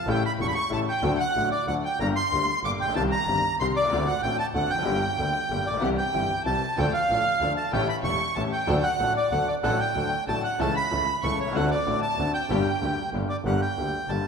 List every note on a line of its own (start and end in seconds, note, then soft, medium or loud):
0.07 0.21 A1 medium
0.07 0.21 A2 medium
0.07 0.21 C#3 medium
0.07 0.21 G3 medium
0.07 0.21 A3 medium
0.07 0.21 E4 medium
0.07 0.23 G5 medium
0.07 0.24 G5 medium
0.26 0.32 B5 medium
0.26 0.33 B5 medium
0.39 0.53 E1 medium
0.39 0.53 E2 soft
0.39 0.53 C#3 soft
0.39 0.53 G3 soft
0.39 0.53 A3 soft
0.39 0.53 E4 soft
0.39 0.47 C#6 medium
0.39 0.47 C#6 loud
0.47 0.53 B5 medium
0.47 0.54 B5 medium
0.55 0.71 C#6 medium
0.55 0.71 C#6 loud
0.69 0.84 A1 medium
0.69 0.85 A1 medium
0.69 0.84 A2 medium
0.69 0.84 C#3 soft
0.69 0.84 G3 soft
0.69 0.84 A3 soft
0.69 0.84 E4 medium
0.69 0.80 A5 medium
0.89 1.18 G5 medium
1.02 1.16 D2 medium
1.02 1.16 D3 medium
1.02 1.16 F#3 medium
1.02 1.16 A3 medium
1.02 1.17 F#4 medium
1.20 1.49 F#5 medium
1.35 1.48 A1 medium
1.35 1.49 A1 soft
1.35 1.49 A2 soft
1.35 1.49 D3 soft
1.35 1.49 F#3 soft
1.35 1.49 A3 soft
1.35 1.49 F#4 soft
1.52 1.66 D5 medium
1.67 1.80 D2 medium
1.67 1.81 D2 medium
1.67 1.81 D3 medium
1.67 1.81 F#3 soft
1.67 1.81 A3 soft
1.67 1.81 F#4 soft
1.67 1.75 F#5 medium
1.67 1.76 F#5 medium
1.84 1.99 G5 medium
2.00 2.13 G1 medium
2.00 2.14 G1 medium
2.00 2.13 G2 medium
2.00 2.13 D3 medium
2.00 2.13 G3 medium
2.00 2.14 A#3 medium
2.00 2.13 G4 medium
2.00 2.07 A#5 medium
2.00 2.08 A#5 medium
2.16 2.60 C6 loud
2.16 2.61 C6 medium
2.32 2.45 D2 medium
2.32 2.46 D2 soft
2.32 2.46 D3 medium
2.32 2.46 G3 soft
2.32 2.46 A#3 soft
2.32 2.46 G4 soft
2.64 2.77 G1 medium
2.64 2.77 G2 medium
2.64 2.77 D3 soft
2.64 2.77 G3 soft
2.64 2.77 A#3 soft
2.64 2.77 G4 medium
2.64 2.71 D6 medium
2.80 2.95 A#1 medium
2.80 2.95 G5 medium
2.85 2.88 A1 soft
2.89 2.92 A#1 medium
2.93 2.96 B1 medium
2.93 3.09 C2 medium
2.93 3.09 C3 medium
2.93 3.09 D#3 medium
2.93 3.09 G3 medium
2.93 3.09 C4 medium
2.93 3.09 G4 medium
2.93 3.02 A5 medium
2.93 3.03 A5 medium
3.12 3.56 A#5 medium
3.27 3.40 G1 medium
3.27 3.41 G1 soft
3.27 3.41 G2 soft
3.27 3.41 D#3 soft
3.27 3.41 G3 soft
3.27 3.41 C4 soft
3.27 3.41 G4 medium
3.59 3.72 C2 medium
3.59 3.73 C2 medium
3.59 3.73 C3 medium
3.59 3.73 D#3 soft
3.59 3.73 G3 soft
3.59 3.74 C4 soft
3.59 3.73 G4 medium
3.59 3.67 C6 medium
3.75 3.91 C2 medium
3.75 4.08 D5 medium
3.75 4.05 D5 medium
3.81 3.84 B1 medium
3.81 3.87 C2 medium
3.88 3.92 C#2 medium
3.88 4.04 D2 medium
3.88 4.05 D3 medium
3.88 4.05 A3 medium
3.88 4.05 C4 medium
3.88 4.05 F#4 medium
3.93 4.05 D2 medium
4.07 4.22 F#5 medium
4.23 4.36 A1 medium
4.23 4.37 A1 medium
4.23 4.37 A2 medium
4.23 4.37 D3 soft
4.23 4.37 A3 soft
4.23 4.37 C4 soft
4.23 4.37 F#4 soft
4.23 4.37 G5 medium
4.39 4.46 A5 medium
4.39 4.47 A5 loud
4.54 4.67 D2 medium
4.54 4.68 D2 medium
4.54 4.68 D3 medium
4.54 4.68 A3 soft
4.54 4.68 C4 soft
4.54 4.68 F#4 medium
4.54 4.69 F#5 medium
4.54 4.71 F#5 medium
4.70 4.85 F1 medium
4.70 5.69 G5 medium
4.70 5.63 G5 medium
4.75 4.79 E2 soft
4.75 4.82 F2 medium
4.82 4.99 G1 medium
4.82 4.86 F#2 medium
4.82 4.99 G2 medium
4.82 4.99 D3 medium
4.82 4.99 G3 medium
4.82 4.99 A#3 medium
4.82 4.99 G4 medium
5.18 5.31 D2 medium
5.18 5.32 D2 soft
5.18 5.32 D3 medium
5.18 5.32 G3 soft
5.18 5.32 A#3 soft
5.18 5.32 G4 soft
5.50 5.63 G1 medium
5.50 5.64 G1 medium
5.50 5.64 G2 medium
5.50 5.64 D3 soft
5.50 5.64 G3 soft
5.50 5.64 A#3 soft
5.50 5.64 G4 medium
5.66 5.82 A#1 medium
5.66 5.81 D5 medium
5.66 5.83 D5 medium
5.71 5.74 A1 soft
5.71 5.78 A#1 medium
5.77 5.81 B1 medium
5.77 5.88 F#5 medium
5.81 5.95 C2 medium
5.81 5.95 C3 medium
5.81 5.95 E3 medium
5.81 5.95 G3 medium
5.81 5.95 C4 medium
5.81 5.95 E4 medium
5.81 5.95 G4 medium
5.81 5.96 G4 medium
5.81 5.89 F#5 medium
5.98 6.42 G5 medium
6.14 6.27 G1 medium
6.14 6.27 G2 soft
6.14 6.27 E3 soft
6.14 6.27 G3 soft
6.14 6.27 C4 soft
6.14 6.28 C4 soft
6.14 6.27 E4 soft
6.14 6.27 G4 soft
6.14 6.28 G4 soft
6.45 6.59 C2 medium
6.45 6.59 C3 medium
6.45 6.59 E3 soft
6.45 6.59 G3 soft
6.45 6.59 C4 soft
6.45 6.59 E4 soft
6.45 6.59 G4 soft
6.45 6.59 G4 medium
6.45 6.75 A5 medium
6.45 6.79 A5 medium
6.77 6.91 D2 medium
6.77 6.91 D3 medium
6.77 6.91 F3 medium
6.77 6.91 A3 medium
6.77 6.91 D4 medium
6.77 6.92 D4 medium
6.77 6.91 F4 medium
6.77 6.91 A4 medium
6.77 6.93 G5 medium
6.94 7.53 F5 medium
7.09 7.22 A1 medium
7.09 7.23 A1 medium
7.09 7.23 A2 medium
7.09 7.23 F3 soft
7.09 7.23 A3 soft
7.09 7.22 D4 soft
7.09 7.23 D4 soft
7.09 7.22 F4 soft
7.09 7.23 A4 medium
7.09 7.23 A4 soft
7.41 7.54 D2 medium
7.41 7.55 D2 medium
7.41 7.55 D3 medium
7.41 7.55 F3 soft
7.41 7.55 A3 soft
7.41 7.54 D4 soft
7.41 7.55 D4 soft
7.41 7.54 F4 soft
7.41 7.55 A4 medium
7.57 7.72 A5 medium
7.72 7.86 A1 medium
7.72 7.86 A2 medium
7.72 7.86 E3 medium
7.72 7.86 A3 medium
7.72 7.86 C#4 medium
7.72 7.86 G4 medium
7.72 7.86 A4 medium
7.72 7.88 G5 medium
7.89 7.96 B5 medium
8.03 8.17 E1 medium
8.03 8.18 E1 medium
8.03 8.17 E2 medium
8.03 8.17 E3 soft
8.03 8.17 A3 soft
8.03 8.17 C#4 soft
8.03 8.18 C#4 soft
8.03 8.18 G4 medium
8.03 8.18 G4 soft
8.03 8.18 A4 medium
8.03 8.34 C#6 medium
8.03 8.37 C#6 medium
8.36 8.50 A1 medium
8.36 8.50 A2 medium
8.36 8.50 E3 medium
8.36 8.50 A3 soft
8.36 8.50 C#4 soft
8.36 8.50 C#4 medium
8.36 8.50 G4 medium
8.36 8.50 G4 soft
8.36 8.50 A4 medium
8.36 8.43 A5 medium
8.52 8.82 G5 medium
8.52 8.85 G5 medium
8.67 8.81 D2 medium
8.67 8.81 D2 loud
8.67 8.81 D3 medium
8.67 8.81 F#3 medium
8.67 8.81 A3 medium
8.67 8.81 D4 medium
8.67 8.81 F#4 medium
8.67 8.82 A4 medium
8.83 9.13 F#5 medium
8.83 9.13 F#5 loud
9.00 9.13 A1 medium
9.00 9.13 A2 medium
9.00 9.13 F#3 soft
9.00 9.14 A3 soft
9.00 9.13 D4 soft
9.00 9.14 F#4 soft
9.00 9.14 A4 medium
9.16 9.31 D5 medium
9.16 9.33 D5 medium
9.31 9.45 D2 medium
9.31 9.46 D3 medium
9.31 9.45 F#3 soft
9.31 9.45 A3 soft
9.31 9.45 D4 soft
9.31 9.46 F#4 soft
9.31 9.46 A4 medium
9.31 9.47 F#5 medium
9.31 9.48 F#5 medium
9.48 9.55 D5 medium
9.63 9.77 A1 medium
9.63 9.77 A2 medium
9.63 9.77 F#3 medium
9.63 9.77 A3 medium
9.63 9.77 D4 medium
9.63 9.77 F#4 medium
9.63 9.77 A4 medium
9.63 9.80 F#5 medium
9.63 9.79 F#5 medium
9.80 10.24 G5 medium
9.95 10.09 D2 medium
9.95 10.09 D3 medium
9.95 10.09 F#3 soft
9.95 10.09 A3 soft
9.95 10.09 D4 soft
9.95 10.09 F#4 soft
9.95 10.09 A4 soft
9.95 10.09 A4 medium
10.27 10.41 A1 medium
10.27 10.41 A2 medium
10.27 10.41 F#3 soft
10.27 10.41 A3 soft
10.27 10.41 D4 soft
10.27 10.42 D4 soft
10.27 10.41 F#4 soft
10.27 10.41 A4 medium
10.27 10.41 A4 soft
10.27 10.43 A5 medium
10.43 10.58 F#5 medium
10.43 10.60 F#5 medium
10.59 10.73 C#2 medium
10.59 10.73 C#3 medium
10.59 10.73 E3 medium
10.59 10.73 A3 medium
10.59 10.73 C#4 medium
10.59 10.73 E4 medium
10.59 10.73 A4 medium
10.59 10.75 A5 medium
10.75 11.19 B5 medium
10.75 11.25 B5 medium
10.91 11.04 C#2 medium
10.91 11.05 C#2 medium
10.91 11.04 C#3 medium
10.91 11.04 E3 soft
10.91 11.05 A3 soft
10.91 11.05 C#4 soft
10.91 11.05 E4 soft
10.91 11.05 A4 medium
11.23 11.36 C#2 medium
11.23 11.37 C#2 medium
11.23 11.37 C#3 medium
11.23 11.37 E3 medium
11.23 11.37 A3 soft
11.23 11.36 C#4 soft
11.23 11.37 C#4 soft
11.23 11.36 E4 soft
11.23 11.36 A4 soft
11.23 11.37 A4 medium
11.23 11.38 C#6 medium
11.23 11.40 C#6 medium
11.38 11.55 C2 medium
11.38 11.53 C#5 medium
11.38 11.56 C#5 medium
11.45 11.48 B1 medium
11.45 11.51 C2 medium
11.52 11.55 C#2 medium
11.52 11.68 D2 loud
11.52 11.69 D2 medium
11.52 11.69 D3 medium
11.52 11.69 A3 medium
11.52 11.68 C4 medium
11.52 11.69 C4 medium
11.52 11.68 D4 medium
11.52 11.68 F#4 medium
11.52 11.69 F#4 medium
11.52 11.69 F#5 medium
11.52 11.70 F#5 medium
11.70 12.00 D5 medium
11.86 12.00 A1 soft
11.86 12.00 A1 medium
11.86 12.00 A2 medium
11.86 12.00 D3 soft
11.86 12.00 A3 soft
11.86 11.99 C4 soft
11.86 12.00 C4 soft
11.86 11.99 D4 soft
11.86 11.99 F#4 medium
11.86 12.00 F#4 soft
12.02 12.32 A5 medium
12.17 12.31 D2 medium
12.17 12.32 D2 medium
12.17 12.32 D3 medium
12.17 12.32 A3 soft
12.17 12.31 C4 soft
12.17 12.32 C4 soft
12.17 12.31 D4 soft
12.17 12.31 F#4 medium
12.17 12.32 F#4 medium
12.34 13.10 G5 medium
12.49 12.63 G1 medium
12.49 12.64 G1 medium
12.49 12.64 G2 medium
12.49 12.63 D3 medium
12.49 12.64 G3 medium
12.49 12.63 A#3 medium
12.49 12.64 A#3 medium
12.49 12.63 D4 medium
12.49 12.63 G4 medium
12.49 12.64 G4 medium
12.81 12.95 D2 medium
12.81 12.95 D3 soft
12.81 12.95 G3 soft
12.81 12.95 A#3 soft
12.81 12.95 D4 soft
12.81 12.95 G4 soft
12.81 12.95 G4 medium
13.13 13.27 G1 medium
13.13 13.28 G1 medium
13.13 13.28 G2 medium
13.13 13.27 D3 soft
13.13 13.27 G3 soft
13.13 13.27 A#3 soft
13.13 13.27 D4 soft
13.13 13.27 G4 medium
13.13 13.27 G4 soft
13.29 13.37 D5 medium
13.45 13.59 G1 medium
13.45 13.59 G2 medium
13.45 13.59 D3 medium
13.45 13.59 G3 medium
13.45 13.59 A#3 medium
13.45 13.60 G4 medium
13.45 13.61 F#5 medium
13.62 14.11 G5 medium
13.77 13.91 D2 medium
13.77 13.91 D2 soft
13.77 13.91 D3 soft
13.77 13.91 G3 soft
13.77 13.91 A#3 soft
13.77 13.91 G4 soft
14.09 14.23 G1 medium
14.09 14.23 G2 soft
14.09 14.23 D3 soft
14.09 14.23 G3 soft
14.09 14.23 A#3 soft
14.09 14.23 G4 soft
14.09 14.28 A5 medium